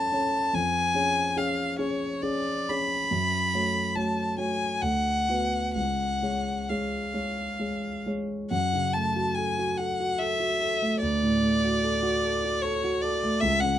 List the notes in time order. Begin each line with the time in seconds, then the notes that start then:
Already playing: F#2 C#4 A4 C#5 A5
0.12 C#4 A4 C#5
0.53 F2 G#5
0.94 C#4 G#4 C#5
1.36 C#4 G#4 C#5 F5
1.79 C#4 G#4 C#5
2.22 C#4 G#4 C#5 D5
2.69 C#4 G#4 C#5 B5
3.11 F#2
3.54 A3 F#4 C#5
3.95 A3 F#4 C#5 A5
4.37 A3 F#4 C#5 G#5
4.82 D2 F#5
5.29 B3 F#4 B4
5.74 C#2 F#5
6.22 G#3 G#4 C#5
6.69 G#3 G#4 C#5 F5
7.14 G#3 G#4 C#5
7.59 G#3 G#4 C#5
8.06 G#3 G#4 C#5
8.51 F#2 F#5
8.73 C#3
8.94 A3 A5
9.16 F#4
9.35 A4 G#5
9.59 F#4
9.77 A4 F#5
10.00 F#4
10.18 A4 E5
10.40 F#4
10.61 A4
10.82 A3
11.00 D2 D5
11.23 A2
11.43 A3
11.64 F#4
11.84 A4
12.03 F#4
12.24 A4
12.44 F#4
12.61 A4 C#5
12.84 F#4
13.02 A4 D5
13.23 A3
13.40 C#2 E5
13.60 C#3 F#5